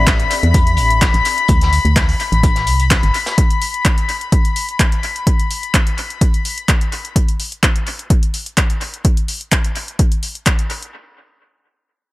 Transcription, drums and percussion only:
0.07 kick, snare, clap, closed hi-hat
0.20 closed hi-hat
0.31 closed hi-hat, open hi-hat
0.43 closed hi-hat
0.54 kick, closed hi-hat
0.67 closed hi-hat
0.77 closed hi-hat, open hi-hat
0.90 closed hi-hat
1.01 kick, snare, clap, closed hi-hat
1.14 closed hi-hat
1.25 closed hi-hat, open hi-hat
1.38 closed hi-hat
1.48 kick, closed hi-hat
1.61 snare, closed hi-hat
1.73 closed hi-hat, open hi-hat
1.85 closed hi-hat
1.96 kick, snare, clap, closed hi-hat
2.09 open hi-hat
2.20 closed hi-hat, open hi-hat
2.32 closed hi-hat
2.43 kick, closed hi-hat
2.56 snare, closed hi-hat
2.67 closed hi-hat, open hi-hat
2.80 closed hi-hat
2.91 kick, snare, clap, closed hi-hat
3.03 closed hi-hat
3.14 closed hi-hat, open hi-hat
3.26 snare, closed hi-hat
3.38 kick, closed hi-hat
3.50 closed hi-hat
3.62 open hi-hat
3.74 closed hi-hat
3.85 kick, clap, closed hi-hat
3.98 closed hi-hat
4.09 open hi-hat
4.21 closed hi-hat
4.32 kick, closed hi-hat
4.45 closed hi-hat
4.56 open hi-hat
4.69 closed hi-hat
4.80 kick, clap, closed hi-hat
4.92 closed hi-hat
5.03 open hi-hat
5.16 closed hi-hat
5.27 kick, closed hi-hat
5.39 closed hi-hat
5.51 open hi-hat
5.63 closed hi-hat
5.74 kick, clap, closed hi-hat
5.87 closed hi-hat
5.98 open hi-hat
6.10 closed hi-hat
6.21 kick, closed hi-hat
6.34 closed hi-hat
6.45 open hi-hat
6.58 closed hi-hat
6.69 kick, clap, closed hi-hat
6.81 closed hi-hat
6.92 open hi-hat
7.05 closed hi-hat
7.16 kick, closed hi-hat
7.28 closed hi-hat
7.40 open hi-hat
7.52 closed hi-hat
7.63 kick, clap, closed hi-hat
7.76 closed hi-hat
7.87 open hi-hat
7.99 closed hi-hat
8.10 kick, closed hi-hat
8.23 closed hi-hat
8.34 open hi-hat
8.46 closed hi-hat
8.57 kick, clap, closed hi-hat
8.70 closed hi-hat
8.81 open hi-hat
8.94 closed hi-hat
9.05 kick, closed hi-hat
9.17 closed hi-hat
9.28 open hi-hat
9.41 closed hi-hat
9.52 kick, clap, closed hi-hat
9.64 closed hi-hat
9.76 open hi-hat
9.88 closed hi-hat
9.99 kick, closed hi-hat
10.12 closed hi-hat
10.23 open hi-hat
10.35 closed hi-hat
10.46 kick, clap, closed hi-hat
10.59 closed hi-hat
10.70 open hi-hat
10.82 closed hi-hat

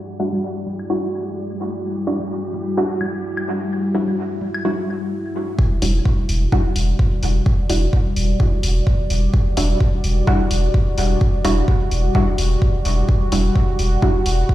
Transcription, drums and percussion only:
0.33 low conga
0.66 low conga
0.79 claves
2.20 low conga
2.54 low conga
3.01 low conga, claves
3.37 claves
4.08 low conga
4.41 low conga
4.54 claves
5.59 kick
5.82 open hi-hat
6.05 kick
6.29 open hi-hat
6.52 kick
6.76 open hi-hat
6.99 kick
7.23 open hi-hat
7.46 kick
7.70 open hi-hat
7.93 kick
8.16 open hi-hat
8.40 kick
8.63 open hi-hat
8.87 kick
9.10 open hi-hat
9.34 kick
9.57 open hi-hat
9.80 kick
10.04 open hi-hat
10.27 kick
10.51 open hi-hat
10.74 kick
10.98 open hi-hat
11.21 kick
11.45 open hi-hat
11.68 kick
11.91 open hi-hat
12.15 kick
12.38 open hi-hat
12.62 kick
12.85 open hi-hat
13.09 kick
13.32 open hi-hat
13.56 kick
13.79 open hi-hat
14.02 kick
14.26 open hi-hat
14.49 kick

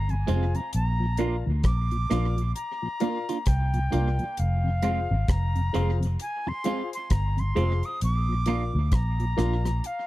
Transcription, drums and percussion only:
0.09 closed hi-hat
0.28 closed hi-hat
0.55 closed hi-hat
0.73 closed hi-hat
1.17 closed hi-hat
1.64 kick, cross-stick, closed hi-hat
1.91 closed hi-hat
2.11 cross-stick, closed hi-hat
2.38 closed hi-hat
2.56 closed hi-hat
3.00 closed hi-hat
3.29 closed hi-hat
3.46 kick, cross-stick, closed hi-hat
3.74 closed hi-hat
3.92 closed hi-hat
4.19 closed hi-hat
4.37 closed hi-hat
4.82 closed hi-hat
5.28 kick, cross-stick, closed hi-hat
5.56 closed hi-hat
5.74 closed hi-hat
6.03 closed hi-hat
6.19 closed hi-hat
6.64 closed hi-hat
6.93 closed hi-hat
7.10 kick, cross-stick, closed hi-hat
7.38 closed hi-hat
7.57 closed hi-hat
7.83 closed hi-hat
8.01 closed hi-hat
8.46 closed hi-hat
8.92 kick, cross-stick, closed hi-hat
9.20 closed hi-hat
9.39 cross-stick, closed hi-hat
9.65 cross-stick, closed hi-hat
9.84 closed hi-hat

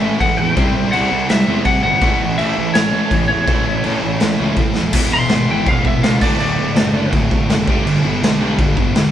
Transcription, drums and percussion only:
0.20 kick, crash
0.57 kick, crash
0.93 crash
1.29 snare, crash
1.65 kick, crash
2.01 kick, crash
2.39 crash
2.75 snare, crash
3.11 kick, crash
3.48 kick, crash
3.84 crash
4.20 snare, crash
4.56 kick, crash
4.75 snare
4.93 kick, crash
5.29 snare, crash
5.66 kick, crash
5.85 kick
6.03 snare, crash
6.21 kick, crash
6.40 crash
6.76 snare, crash
7.13 kick, crash
7.31 kick
7.50 snare, crash
7.68 kick
7.87 crash
8.23 snare, crash
8.59 kick, crash
8.77 kick
8.95 snare, crash

